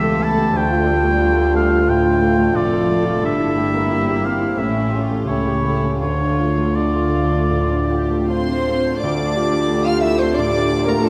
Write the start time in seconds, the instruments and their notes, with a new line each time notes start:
Already playing: double bass section C#2, cello section C#2, grand piano E3 A3 G4 A4, viola section A3, violin section F4 A4, oboe E5
0.03 grand piano A4
0.20 grand piano A3, violin section E4, oboe A5
0.37 grand piano G4
0.53 grand piano D2, double bass section D2, cello section D2, viola section A3, violin section D4 F4, oboe G5
0.70 grand piano F4
0.87 viola section G3, grand piano A4
1.04 grand piano A3
1.20 grand piano F4
1.37 grand piano A4
1.55 grand piano A3, oboe F5
1.71 grand piano F4
1.87 grand piano A2, viola section A3, violin section D4 F4, oboe G5
2.03 grand piano F4
2.20 viola section A3, grand piano A4
2.38 grand piano A3
2.55 double bass section F1, cello section F2, violin section F4 A4, grand piano F4, oboe D5
2.73 grand piano A4
2.89 grand piano A3, violin section A4
3.05 grand piano F4
3.23 double bass section G1, grand piano G2, cello section G2, violin section E4, oboe E5
3.40 grand piano E4
3.57 grand piano G4
3.74 grand piano A#3
3.89 viola section A#3, grand piano E4, violin section G4
4.09 grand piano G4
4.23 grand piano A#3, viola section C4, oboe F5
4.41 grand piano E4
4.57 double bass section A1, grand piano A2, cello section A2, viola section C#4, violin section E4 G4, oboe E5
4.76 grand piano C#4
4.90 violin section F4, grand piano G4
5.11 grand piano A3
5.26 double bass section C#2, cello section C#3, viola section A3, grand piano C#4, violin section E4, oboe C#5
5.47 grand piano G4
5.63 grand piano A3, violin section E4
5.83 grand piano C#4
5.99 double bass section D2, grand piano D2, cello section D3, viola section A3, violin section F4, oboe C#5
6.21 grand piano D4
6.40 grand piano F4
6.58 grand piano A3
6.74 grand piano D4, violin section F4, oboe D5
6.96 grand piano F4
7.14 grand piano A3
7.32 grand piano D4
7.50 grand piano A2
7.71 grand piano D4
7.87 grand piano F4, violin section G4
8.11 grand piano A3
8.27 cello section C4, grand piano D4, violin section F4 C5 C6, clarinet C5, flute section C5
8.49 grand piano F4
8.69 grand piano A3
8.86 grand piano D4
8.99 double bass section D2, viola section A3 F4, cello section D4, flute section D5, violin section D5 D6, clarinet D5
9.03 grand piano D2
9.20 grand piano D4
9.34 grand piano F4, viola section G4
9.51 grand piano A3
9.68 viola section A3, grand piano D4
9.83 cello section F4, grand piano F4, flute section F5, violin section F5 F6, clarinet F5
9.99 cello section E4, flute section E5, violin section E5 E6, clarinet E5
10.04 grand piano A3
10.16 cello section C4, grand piano D4, flute section C5, violin section C5 C6, clarinet C5
10.34 grand piano A2, cello section D4, viola section F4, french horn section G4, flute section D5, violin section D5 D6, clarinet D5
10.55 grand piano D4
10.71 grand piano F4
10.86 grand piano A3, cello section A#3, violin section A#4 A#5, clarinet A#4, flute section A#4
11.00 double bass section F2, cello section A3, french horn section F4, flute section A4, clarinet A4, violin section A4
11.04 grand piano D4, violin section A5